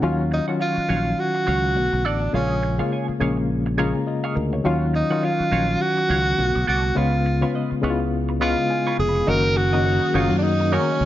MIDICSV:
0, 0, Header, 1, 8, 480
1, 0, Start_track
1, 0, Key_signature, 6, "major"
1, 0, Tempo, 578035
1, 23, Time_signature, 4, 2, 24, 8
1, 9178, End_track
2, 0, Start_track
2, 0, Title_t, "Clean electric guitar"
2, 0, Program_c, 0, 27
2, 19, Note_on_c, 0, 66, 60
2, 25, Note_on_c, 0, 73, 68
2, 28, Note_on_c, 0, 77, 72
2, 148, Note_off_c, 0, 77, 0
2, 156, Note_off_c, 0, 73, 0
2, 188, Note_off_c, 0, 66, 0
2, 396, Note_on_c, 0, 78, 45
2, 403, Note_on_c, 0, 73, 46
2, 409, Note_on_c, 0, 66, 40
2, 485, Note_off_c, 0, 66, 0
2, 492, Note_off_c, 0, 73, 0
2, 495, Note_on_c, 0, 66, 64
2, 500, Note_off_c, 0, 78, 0
2, 502, Note_on_c, 0, 73, 71
2, 506, Note_on_c, 0, 77, 65
2, 630, Note_off_c, 0, 77, 0
2, 635, Note_off_c, 0, 73, 0
2, 665, Note_off_c, 0, 66, 0
2, 737, Note_on_c, 0, 66, 50
2, 741, Note_on_c, 0, 73, 57
2, 747, Note_on_c, 0, 77, 58
2, 866, Note_off_c, 0, 77, 0
2, 872, Note_off_c, 0, 73, 0
2, 878, Note_off_c, 0, 66, 0
2, 1219, Note_on_c, 0, 66, 68
2, 1224, Note_on_c, 0, 73, 71
2, 1227, Note_on_c, 0, 77, 68
2, 1349, Note_off_c, 0, 77, 0
2, 1358, Note_off_c, 0, 73, 0
2, 1388, Note_off_c, 0, 66, 0
2, 1701, Note_on_c, 0, 69, 64
2, 1707, Note_on_c, 0, 74, 71
2, 1712, Note_on_c, 0, 78, 77
2, 1831, Note_off_c, 0, 78, 0
2, 1839, Note_off_c, 0, 74, 0
2, 1869, Note_off_c, 0, 69, 0
2, 1941, Note_on_c, 0, 68, 69
2, 1945, Note_on_c, 0, 73, 77
2, 1952, Note_on_c, 0, 77, 92
2, 2072, Note_off_c, 0, 77, 0
2, 2078, Note_off_c, 0, 73, 0
2, 2109, Note_off_c, 0, 68, 0
2, 2319, Note_on_c, 0, 77, 56
2, 2325, Note_on_c, 0, 73, 51
2, 2330, Note_on_c, 0, 68, 47
2, 2411, Note_off_c, 0, 68, 0
2, 2416, Note_off_c, 0, 73, 0
2, 2421, Note_off_c, 0, 77, 0
2, 2421, Note_on_c, 0, 68, 60
2, 2426, Note_on_c, 0, 73, 59
2, 2431, Note_on_c, 0, 80, 64
2, 2556, Note_off_c, 0, 73, 0
2, 2556, Note_off_c, 0, 80, 0
2, 2589, Note_off_c, 0, 68, 0
2, 2661, Note_on_c, 0, 68, 54
2, 2668, Note_on_c, 0, 73, 56
2, 2672, Note_on_c, 0, 77, 57
2, 2791, Note_off_c, 0, 77, 0
2, 2799, Note_off_c, 0, 73, 0
2, 2801, Note_off_c, 0, 68, 0
2, 3139, Note_on_c, 0, 68, 66
2, 3146, Note_on_c, 0, 73, 70
2, 3150, Note_on_c, 0, 77, 77
2, 3267, Note_off_c, 0, 77, 0
2, 3274, Note_off_c, 0, 73, 0
2, 3308, Note_off_c, 0, 68, 0
2, 3519, Note_on_c, 0, 77, 73
2, 3526, Note_on_c, 0, 73, 69
2, 3530, Note_on_c, 0, 68, 56
2, 3613, Note_off_c, 0, 68, 0
2, 3617, Note_off_c, 0, 73, 0
2, 3619, Note_off_c, 0, 77, 0
2, 3861, Note_on_c, 0, 66, 78
2, 3867, Note_on_c, 0, 73, 85
2, 3871, Note_on_c, 0, 77, 90
2, 3993, Note_off_c, 0, 77, 0
2, 4001, Note_off_c, 0, 73, 0
2, 4029, Note_off_c, 0, 66, 0
2, 4239, Note_on_c, 0, 78, 58
2, 4243, Note_on_c, 0, 73, 50
2, 4248, Note_on_c, 0, 66, 46
2, 4328, Note_off_c, 0, 66, 0
2, 4333, Note_off_c, 0, 73, 0
2, 4338, Note_on_c, 0, 66, 62
2, 4341, Note_off_c, 0, 78, 0
2, 4343, Note_on_c, 0, 73, 69
2, 4346, Note_on_c, 0, 77, 70
2, 4473, Note_off_c, 0, 77, 0
2, 4480, Note_off_c, 0, 73, 0
2, 4507, Note_off_c, 0, 66, 0
2, 4580, Note_on_c, 0, 66, 52
2, 4585, Note_on_c, 0, 73, 54
2, 4589, Note_on_c, 0, 77, 55
2, 4709, Note_off_c, 0, 77, 0
2, 4716, Note_off_c, 0, 73, 0
2, 4720, Note_off_c, 0, 66, 0
2, 5063, Note_on_c, 0, 66, 68
2, 5070, Note_on_c, 0, 73, 75
2, 5074, Note_on_c, 0, 77, 71
2, 5191, Note_off_c, 0, 77, 0
2, 5199, Note_off_c, 0, 73, 0
2, 5230, Note_off_c, 0, 66, 0
2, 5541, Note_on_c, 0, 66, 66
2, 5546, Note_on_c, 0, 69, 68
2, 5551, Note_on_c, 0, 74, 69
2, 5670, Note_off_c, 0, 74, 0
2, 5678, Note_off_c, 0, 69, 0
2, 5709, Note_off_c, 0, 66, 0
2, 5782, Note_on_c, 0, 65, 76
2, 5789, Note_on_c, 0, 71, 81
2, 5793, Note_on_c, 0, 73, 84
2, 5912, Note_off_c, 0, 73, 0
2, 5920, Note_off_c, 0, 71, 0
2, 5949, Note_off_c, 0, 65, 0
2, 6164, Note_on_c, 0, 73, 54
2, 6169, Note_on_c, 0, 71, 55
2, 6173, Note_on_c, 0, 65, 50
2, 6252, Note_off_c, 0, 65, 0
2, 6257, Note_off_c, 0, 71, 0
2, 6262, Note_on_c, 0, 65, 67
2, 6263, Note_off_c, 0, 73, 0
2, 6267, Note_on_c, 0, 71, 68
2, 6272, Note_on_c, 0, 75, 75
2, 6399, Note_off_c, 0, 75, 0
2, 6402, Note_off_c, 0, 71, 0
2, 6429, Note_off_c, 0, 65, 0
2, 6503, Note_on_c, 0, 65, 56
2, 6508, Note_on_c, 0, 71, 59
2, 6512, Note_on_c, 0, 73, 65
2, 6632, Note_off_c, 0, 73, 0
2, 6640, Note_off_c, 0, 71, 0
2, 6642, Note_off_c, 0, 65, 0
2, 6984, Note_on_c, 0, 65, 72
2, 6988, Note_on_c, 0, 71, 82
2, 6992, Note_on_c, 0, 73, 81
2, 7113, Note_off_c, 0, 73, 0
2, 7120, Note_off_c, 0, 71, 0
2, 7150, Note_off_c, 0, 65, 0
2, 7363, Note_on_c, 0, 73, 59
2, 7368, Note_on_c, 0, 71, 58
2, 7373, Note_on_c, 0, 65, 53
2, 7451, Note_off_c, 0, 65, 0
2, 7456, Note_off_c, 0, 71, 0
2, 7459, Note_off_c, 0, 73, 0
2, 7699, Note_on_c, 0, 63, 80
2, 7704, Note_on_c, 0, 70, 82
2, 7709, Note_on_c, 0, 73, 92
2, 7827, Note_off_c, 0, 73, 0
2, 7836, Note_off_c, 0, 70, 0
2, 7868, Note_off_c, 0, 63, 0
2, 8079, Note_on_c, 0, 75, 55
2, 8086, Note_on_c, 0, 70, 51
2, 8090, Note_on_c, 0, 63, 50
2, 8168, Note_off_c, 0, 63, 0
2, 8173, Note_off_c, 0, 70, 0
2, 8178, Note_on_c, 0, 63, 64
2, 8181, Note_off_c, 0, 75, 0
2, 8183, Note_on_c, 0, 70, 65
2, 8188, Note_on_c, 0, 73, 68
2, 8312, Note_off_c, 0, 73, 0
2, 8317, Note_off_c, 0, 70, 0
2, 8347, Note_off_c, 0, 63, 0
2, 8422, Note_on_c, 0, 63, 54
2, 8429, Note_on_c, 0, 70, 58
2, 8432, Note_on_c, 0, 73, 64
2, 8552, Note_off_c, 0, 73, 0
2, 8558, Note_off_c, 0, 70, 0
2, 8561, Note_off_c, 0, 63, 0
2, 8905, Note_on_c, 0, 63, 70
2, 8909, Note_on_c, 0, 70, 69
2, 8913, Note_on_c, 0, 73, 78
2, 9032, Note_off_c, 0, 73, 0
2, 9039, Note_off_c, 0, 70, 0
2, 9070, Note_off_c, 0, 63, 0
2, 9178, End_track
3, 0, Start_track
3, 0, Title_t, "Tenor saxophone"
3, 0, Program_c, 1, 66
3, 278, Note_on_c, 1, 63, 79
3, 383, Note_off_c, 1, 63, 0
3, 513, Note_on_c, 1, 65, 93
3, 994, Note_on_c, 1, 66, 105
3, 1006, Note_off_c, 1, 65, 0
3, 1705, Note_on_c, 1, 62, 84
3, 1717, Note_off_c, 1, 66, 0
3, 1945, Note_off_c, 1, 62, 0
3, 1952, Note_on_c, 1, 61, 81
3, 2395, Note_off_c, 1, 61, 0
3, 4114, Note_on_c, 1, 63, 85
3, 4356, Note_on_c, 1, 65, 96
3, 4368, Note_off_c, 1, 63, 0
3, 4826, Note_on_c, 1, 66, 118
3, 4838, Note_off_c, 1, 65, 0
3, 5545, Note_off_c, 1, 66, 0
3, 5553, Note_on_c, 1, 66, 99
3, 5786, Note_on_c, 1, 65, 88
3, 5799, Note_off_c, 1, 66, 0
3, 6265, Note_off_c, 1, 65, 0
3, 6990, Note_on_c, 1, 65, 98
3, 7433, Note_off_c, 1, 65, 0
3, 7470, Note_on_c, 1, 68, 100
3, 7714, Note_on_c, 1, 70, 104
3, 7726, Note_off_c, 1, 68, 0
3, 7947, Note_on_c, 1, 66, 109
3, 7959, Note_off_c, 1, 70, 0
3, 8433, Note_on_c, 1, 65, 92
3, 8445, Note_off_c, 1, 66, 0
3, 8616, Note_off_c, 1, 65, 0
3, 8621, Note_on_c, 1, 62, 65
3, 8665, Note_on_c, 1, 63, 96
3, 8677, Note_off_c, 1, 62, 0
3, 8910, Note_on_c, 1, 61, 102
3, 8923, Note_off_c, 1, 63, 0
3, 9178, Note_off_c, 1, 61, 0
3, 9178, End_track
4, 0, Start_track
4, 0, Title_t, "String machine"
4, 0, Program_c, 2, 50
4, 7710, Note_on_c, 2, 63, 75
4, 7710, Note_on_c, 2, 68, 72
4, 7710, Note_on_c, 2, 70, 85
4, 7711, Note_on_c, 2, 61, 72
4, 7713, Note_on_c, 2, 54, 84
4, 9178, Note_off_c, 2, 54, 0
4, 9178, Note_off_c, 2, 61, 0
4, 9178, Note_off_c, 2, 63, 0
4, 9178, Note_off_c, 2, 68, 0
4, 9178, Note_off_c, 2, 70, 0
4, 9178, End_track
5, 0, Start_track
5, 0, Title_t, "Reed electric piano"
5, 0, Program_c, 3, 4
5, 0, Control_c, 3, 64, 127
5, 18, Note_on_c, 3, 51, 107
5, 24, Note_on_c, 3, 54, 93
5, 26, Note_on_c, 3, 61, 90
5, 32, Note_on_c, 3, 65, 112
5, 33, Control_c, 3, 64, 0
5, 167, Control_c, 3, 64, 127
5, 309, Note_off_c, 3, 51, 0
5, 312, Note_off_c, 3, 54, 0
5, 313, Note_off_c, 3, 61, 0
5, 316, Note_off_c, 3, 65, 0
5, 399, Note_on_c, 3, 51, 69
5, 404, Note_on_c, 3, 54, 61
5, 408, Note_on_c, 3, 61, 60
5, 413, Note_on_c, 3, 65, 76
5, 676, Note_off_c, 3, 51, 0
5, 679, Note_off_c, 3, 54, 0
5, 681, Note_off_c, 3, 61, 0
5, 683, Note_off_c, 3, 65, 0
5, 733, Note_on_c, 3, 51, 67
5, 741, Note_on_c, 3, 54, 63
5, 742, Note_on_c, 3, 61, 61
5, 748, Note_on_c, 3, 63, 59
5, 802, Note_on_c, 3, 65, 73
5, 808, Note_off_c, 3, 63, 0
5, 1131, Note_off_c, 3, 51, 0
5, 1135, Note_off_c, 3, 54, 0
5, 1135, Note_off_c, 3, 61, 0
5, 1166, Note_off_c, 3, 65, 0
5, 1216, Note_on_c, 3, 51, 55
5, 1221, Note_on_c, 3, 54, 53
5, 1227, Note_on_c, 3, 61, 52
5, 1228, Note_on_c, 3, 65, 61
5, 1453, Note_on_c, 3, 50, 67
5, 1458, Note_on_c, 3, 57, 65
5, 1460, Note_off_c, 3, 51, 0
5, 1463, Note_off_c, 3, 54, 0
5, 1463, Note_on_c, 3, 59, 63
5, 1465, Note_off_c, 3, 61, 0
5, 1465, Note_on_c, 3, 66, 74
5, 1466, Note_off_c, 3, 65, 0
5, 1474, Control_c, 3, 64, 0
5, 1614, Control_c, 3, 64, 127
5, 1858, Note_off_c, 3, 50, 0
5, 1861, Note_off_c, 3, 57, 0
5, 1863, Note_off_c, 3, 59, 0
5, 1864, Note_off_c, 3, 66, 0
5, 1936, Note_on_c, 3, 49, 93
5, 1940, Note_on_c, 3, 56, 81
5, 1944, Note_on_c, 3, 58, 80
5, 1948, Note_on_c, 3, 65, 98
5, 1954, Control_c, 3, 64, 0
5, 2109, Control_c, 3, 64, 127
5, 2229, Note_off_c, 3, 49, 0
5, 2231, Note_off_c, 3, 56, 0
5, 2233, Note_off_c, 3, 58, 0
5, 2235, Note_off_c, 3, 65, 0
5, 2314, Note_on_c, 3, 49, 69
5, 2318, Note_on_c, 3, 56, 61
5, 2322, Note_on_c, 3, 58, 62
5, 2327, Note_on_c, 3, 65, 76
5, 2594, Note_off_c, 3, 49, 0
5, 2596, Note_off_c, 3, 56, 0
5, 2598, Note_off_c, 3, 58, 0
5, 2600, Note_off_c, 3, 65, 0
5, 2652, Note_on_c, 3, 49, 74
5, 2658, Note_on_c, 3, 56, 73
5, 2662, Note_on_c, 3, 58, 68
5, 2664, Note_on_c, 3, 61, 85
5, 3051, Note_off_c, 3, 49, 0
5, 3054, Note_off_c, 3, 56, 0
5, 3056, Note_off_c, 3, 58, 0
5, 3057, Note_off_c, 3, 61, 0
5, 3139, Note_on_c, 3, 49, 84
5, 3140, Note_on_c, 3, 56, 70
5, 3144, Note_on_c, 3, 82, 62
5, 3149, Note_on_c, 3, 58, 69
5, 3151, Note_on_c, 3, 65, 89
5, 3367, Note_off_c, 3, 82, 0
5, 3371, Note_off_c, 3, 65, 0
5, 3378, Note_on_c, 3, 75, 64
5, 3381, Note_on_c, 3, 65, 58
5, 3515, Note_off_c, 3, 65, 0
5, 3516, Note_on_c, 3, 68, 65
5, 3615, Note_off_c, 3, 68, 0
5, 3617, Note_on_c, 3, 70, 68
5, 3719, Note_off_c, 3, 49, 0
5, 3720, Note_off_c, 3, 56, 0
5, 3724, Note_off_c, 3, 58, 0
5, 3753, Note_off_c, 3, 70, 0
5, 3763, Note_on_c, 3, 73, 60
5, 3828, Note_off_c, 3, 75, 0
5, 3854, Note_on_c, 3, 51, 115
5, 3858, Note_on_c, 3, 54, 108
5, 3865, Note_on_c, 3, 61, 101
5, 3869, Note_on_c, 3, 65, 126
5, 3874, Control_c, 3, 64, 0
5, 3991, Note_off_c, 3, 73, 0
5, 4034, Control_c, 3, 64, 127
5, 4148, Note_off_c, 3, 51, 0
5, 4150, Note_off_c, 3, 54, 0
5, 4153, Note_off_c, 3, 61, 0
5, 4155, Note_off_c, 3, 65, 0
5, 4237, Note_on_c, 3, 51, 74
5, 4241, Note_on_c, 3, 54, 67
5, 4246, Note_on_c, 3, 61, 64
5, 4252, Note_on_c, 3, 65, 80
5, 4515, Note_off_c, 3, 51, 0
5, 4518, Note_off_c, 3, 54, 0
5, 4520, Note_off_c, 3, 61, 0
5, 4523, Note_off_c, 3, 65, 0
5, 4574, Note_on_c, 3, 51, 69
5, 4579, Note_on_c, 3, 54, 64
5, 4586, Note_on_c, 3, 61, 66
5, 4590, Note_on_c, 3, 65, 77
5, 4972, Note_off_c, 3, 51, 0
5, 4974, Note_off_c, 3, 54, 0
5, 4977, Note_off_c, 3, 61, 0
5, 4980, Note_off_c, 3, 65, 0
5, 5053, Note_on_c, 3, 51, 61
5, 5059, Note_on_c, 3, 54, 59
5, 5063, Note_on_c, 3, 61, 54
5, 5066, Note_on_c, 3, 65, 68
5, 5291, Note_on_c, 3, 50, 68
5, 5295, Note_off_c, 3, 65, 0
5, 5298, Note_on_c, 3, 57, 68
5, 5299, Note_off_c, 3, 51, 0
5, 5302, Note_off_c, 3, 54, 0
5, 5302, Note_on_c, 3, 59, 62
5, 5304, Note_off_c, 3, 61, 0
5, 5305, Note_on_c, 3, 65, 60
5, 5315, Control_c, 3, 64, 0
5, 5359, Note_on_c, 3, 66, 78
5, 5367, Note_off_c, 3, 65, 0
5, 5448, Control_c, 3, 64, 127
5, 5697, Note_off_c, 3, 50, 0
5, 5701, Note_off_c, 3, 57, 0
5, 5703, Note_off_c, 3, 59, 0
5, 5731, Note_off_c, 3, 66, 0
5, 5772, Note_on_c, 3, 49, 94
5, 5775, Note_on_c, 3, 56, 91
5, 5781, Note_on_c, 3, 59, 85
5, 5785, Note_on_c, 3, 65, 105
5, 5793, Control_c, 3, 64, 0
5, 5958, Control_c, 3, 64, 127
5, 6067, Note_off_c, 3, 49, 0
5, 6068, Note_off_c, 3, 56, 0
5, 6071, Note_off_c, 3, 59, 0
5, 6073, Note_off_c, 3, 65, 0
5, 6156, Note_on_c, 3, 49, 70
5, 6162, Note_on_c, 3, 56, 64
5, 6163, Note_on_c, 3, 59, 66
5, 6167, Note_on_c, 3, 65, 80
5, 6435, Note_off_c, 3, 49, 0
5, 6438, Note_off_c, 3, 56, 0
5, 6438, Note_off_c, 3, 59, 0
5, 6440, Note_off_c, 3, 65, 0
5, 6494, Note_on_c, 3, 49, 80
5, 6498, Note_on_c, 3, 56, 77
5, 6503, Note_on_c, 3, 59, 76
5, 6509, Note_on_c, 3, 64, 70
5, 6560, Note_on_c, 3, 65, 90
5, 6569, Note_off_c, 3, 64, 0
5, 6891, Note_off_c, 3, 49, 0
5, 6893, Note_off_c, 3, 56, 0
5, 6896, Note_off_c, 3, 59, 0
5, 6924, Note_off_c, 3, 65, 0
5, 6978, Note_on_c, 3, 49, 84
5, 6982, Note_on_c, 3, 75, 65
5, 6983, Note_on_c, 3, 56, 76
5, 6985, Note_on_c, 3, 59, 72
5, 6990, Note_on_c, 3, 65, 92
5, 7057, Note_off_c, 3, 75, 0
5, 7068, Note_on_c, 3, 77, 68
5, 7215, Note_off_c, 3, 77, 0
5, 7227, Note_on_c, 3, 80, 65
5, 7523, Note_off_c, 3, 80, 0
5, 7547, Note_on_c, 3, 83, 70
5, 7558, Note_off_c, 3, 49, 0
5, 7560, Note_off_c, 3, 56, 0
5, 7561, Note_off_c, 3, 59, 0
5, 7564, Note_off_c, 3, 65, 0
5, 7694, Note_off_c, 3, 83, 0
5, 7701, Note_on_c, 3, 51, 99
5, 7705, Note_on_c, 3, 58, 84
5, 7707, Note_on_c, 3, 61, 86
5, 7713, Control_c, 3, 64, 0
5, 7715, Note_on_c, 3, 66, 105
5, 7839, Control_c, 3, 64, 127
5, 7991, Note_off_c, 3, 51, 0
5, 7992, Note_off_c, 3, 58, 0
5, 7994, Note_off_c, 3, 61, 0
5, 7998, Note_off_c, 3, 66, 0
5, 8082, Note_on_c, 3, 51, 65
5, 8087, Note_on_c, 3, 58, 65
5, 8090, Note_on_c, 3, 61, 62
5, 8093, Note_on_c, 3, 66, 79
5, 8357, Note_off_c, 3, 51, 0
5, 8360, Note_off_c, 3, 58, 0
5, 8361, Note_off_c, 3, 61, 0
5, 8363, Note_off_c, 3, 66, 0
5, 8420, Note_on_c, 3, 51, 74
5, 8425, Note_on_c, 3, 57, 55
5, 8429, Note_on_c, 3, 61, 70
5, 8434, Note_on_c, 3, 66, 87
5, 8477, Note_on_c, 3, 58, 68
5, 8487, Note_off_c, 3, 57, 0
5, 8814, Note_off_c, 3, 51, 0
5, 8818, Note_off_c, 3, 61, 0
5, 8821, Note_off_c, 3, 66, 0
5, 8842, Note_off_c, 3, 58, 0
5, 8902, Note_on_c, 3, 51, 72
5, 8906, Note_on_c, 3, 58, 63
5, 8909, Note_on_c, 3, 61, 60
5, 8914, Note_on_c, 3, 66, 78
5, 9178, Note_off_c, 3, 51, 0
5, 9178, Note_off_c, 3, 58, 0
5, 9178, Note_off_c, 3, 61, 0
5, 9178, Note_off_c, 3, 66, 0
5, 9178, End_track
6, 0, Start_track
6, 0, Title_t, "Fingered electric bass"
6, 0, Program_c, 4, 33
6, 23, Note_on_c, 4, 39, 90
6, 321, Note_off_c, 4, 39, 0
6, 746, Note_on_c, 4, 34, 79
6, 934, Note_off_c, 4, 34, 0
6, 1229, Note_on_c, 4, 37, 80
6, 1464, Note_off_c, 4, 37, 0
6, 1464, Note_on_c, 4, 35, 91
6, 1574, Note_off_c, 4, 35, 0
6, 1604, Note_on_c, 4, 35, 79
6, 1703, Note_off_c, 4, 35, 0
6, 1703, Note_on_c, 4, 33, 91
6, 1892, Note_off_c, 4, 33, 0
6, 1942, Note_on_c, 4, 34, 90
6, 2321, Note_off_c, 4, 34, 0
6, 2665, Note_on_c, 4, 34, 83
6, 3253, Note_off_c, 4, 34, 0
6, 3625, Note_on_c, 4, 38, 84
6, 3814, Note_off_c, 4, 38, 0
6, 3865, Note_on_c, 4, 39, 91
6, 4163, Note_off_c, 4, 39, 0
6, 4584, Note_on_c, 4, 34, 85
6, 4773, Note_off_c, 4, 34, 0
6, 5065, Note_on_c, 4, 37, 89
6, 5254, Note_off_c, 4, 37, 0
6, 5305, Note_on_c, 4, 35, 86
6, 5414, Note_off_c, 4, 35, 0
6, 5446, Note_on_c, 4, 35, 91
6, 5524, Note_off_c, 4, 35, 0
6, 5550, Note_on_c, 4, 36, 87
6, 5737, Note_off_c, 4, 36, 0
6, 5791, Note_on_c, 4, 37, 92
6, 6166, Note_off_c, 4, 37, 0
6, 6506, Note_on_c, 4, 37, 83
6, 7093, Note_off_c, 4, 37, 0
6, 7467, Note_on_c, 4, 29, 88
6, 7654, Note_off_c, 4, 29, 0
6, 7706, Note_on_c, 4, 30, 95
6, 8293, Note_off_c, 4, 30, 0
6, 8425, Note_on_c, 4, 30, 89
6, 8534, Note_off_c, 4, 30, 0
6, 8561, Note_on_c, 4, 42, 87
6, 8939, Note_off_c, 4, 42, 0
6, 9141, Note_on_c, 4, 37, 82
6, 9178, Note_off_c, 4, 37, 0
6, 9178, End_track
7, 0, Start_track
7, 0, Title_t, "Muted clean electric guitar strokes"
7, 158, Note_on_c, 9, 29, 33
7, 241, Note_off_c, 9, 29, 0
7, 259, Note_on_c, 9, 29, 29
7, 342, Note_off_c, 9, 29, 0
7, 640, Note_on_c, 9, 29, 31
7, 723, Note_off_c, 9, 29, 0
7, 876, Note_on_c, 9, 29, 36
7, 959, Note_off_c, 9, 29, 0
7, 1117, Note_on_c, 9, 29, 34
7, 1201, Note_off_c, 9, 29, 0
7, 1359, Note_on_c, 9, 29, 37
7, 1442, Note_off_c, 9, 29, 0
7, 1459, Note_on_c, 9, 29, 36
7, 1542, Note_off_c, 9, 29, 0
7, 1603, Note_on_c, 9, 29, 33
7, 1686, Note_off_c, 9, 29, 0
7, 1841, Note_on_c, 9, 29, 39
7, 1924, Note_off_c, 9, 29, 0
7, 2082, Note_on_c, 9, 29, 41
7, 2165, Note_off_c, 9, 29, 0
7, 2181, Note_on_c, 9, 29, 40
7, 2264, Note_off_c, 9, 29, 0
7, 2560, Note_on_c, 9, 29, 38
7, 2643, Note_off_c, 9, 29, 0
7, 2801, Note_on_c, 9, 29, 38
7, 2884, Note_off_c, 9, 29, 0
7, 3041, Note_on_c, 9, 29, 41
7, 3124, Note_off_c, 9, 29, 0
7, 3277, Note_on_c, 9, 29, 37
7, 3360, Note_off_c, 9, 29, 0
7, 3381, Note_on_c, 9, 29, 30
7, 3464, Note_off_c, 9, 29, 0
7, 3623, Note_on_c, 9, 29, 35
7, 3706, Note_off_c, 9, 29, 0
7, 3761, Note_on_c, 9, 29, 39
7, 3844, Note_off_c, 9, 29, 0
7, 4003, Note_on_c, 9, 29, 45
7, 4086, Note_off_c, 9, 29, 0
7, 4099, Note_on_c, 9, 29, 30
7, 4182, Note_off_c, 9, 29, 0
7, 4483, Note_on_c, 9, 29, 41
7, 4566, Note_off_c, 9, 29, 0
7, 4719, Note_on_c, 9, 29, 37
7, 4802, Note_off_c, 9, 29, 0
7, 4960, Note_on_c, 9, 29, 34
7, 5043, Note_off_c, 9, 29, 0
7, 5201, Note_on_c, 9, 29, 36
7, 5284, Note_off_c, 9, 29, 0
7, 5305, Note_on_c, 9, 29, 37
7, 5388, Note_off_c, 9, 29, 0
7, 5443, Note_on_c, 9, 29, 38
7, 5526, Note_off_c, 9, 29, 0
7, 5680, Note_on_c, 9, 29, 36
7, 5763, Note_off_c, 9, 29, 0
7, 5921, Note_on_c, 9, 29, 39
7, 6005, Note_off_c, 9, 29, 0
7, 6026, Note_on_c, 9, 29, 34
7, 6109, Note_off_c, 9, 29, 0
7, 6403, Note_on_c, 9, 29, 40
7, 6486, Note_off_c, 9, 29, 0
7, 6642, Note_on_c, 9, 29, 39
7, 6725, Note_off_c, 9, 29, 0
7, 6882, Note_on_c, 9, 29, 44
7, 6965, Note_off_c, 9, 29, 0
7, 7123, Note_on_c, 9, 29, 43
7, 7206, Note_off_c, 9, 29, 0
7, 7225, Note_on_c, 9, 29, 39
7, 7308, Note_off_c, 9, 29, 0
7, 7461, Note_on_c, 9, 29, 37
7, 7544, Note_off_c, 9, 29, 0
7, 7600, Note_on_c, 9, 29, 38
7, 7683, Note_off_c, 9, 29, 0
7, 7837, Note_on_c, 9, 29, 41
7, 7920, Note_off_c, 9, 29, 0
7, 7939, Note_on_c, 9, 29, 40
7, 8022, Note_off_c, 9, 29, 0
7, 8322, Note_on_c, 9, 29, 36
7, 8405, Note_off_c, 9, 29, 0
7, 8562, Note_on_c, 9, 29, 49
7, 8645, Note_off_c, 9, 29, 0
7, 8802, Note_on_c, 9, 29, 35
7, 8885, Note_off_c, 9, 29, 0
7, 9042, Note_on_c, 9, 29, 46
7, 9125, Note_off_c, 9, 29, 0
7, 9147, Note_on_c, 9, 29, 38
7, 9178, Note_off_c, 9, 29, 0
7, 9178, End_track
8, 0, Start_track
8, 0, Title_t, "Muted fingered electric bass strokes"
8, 644, Note_on_c, 9, 29, 44
8, 727, Note_off_c, 9, 29, 0
8, 2565, Note_on_c, 9, 29, 44
8, 2648, Note_off_c, 9, 29, 0
8, 4486, Note_on_c, 9, 29, 45
8, 4569, Note_off_c, 9, 29, 0
8, 6408, Note_on_c, 9, 29, 44
8, 6491, Note_off_c, 9, 29, 0
8, 9178, End_track
0, 0, End_of_file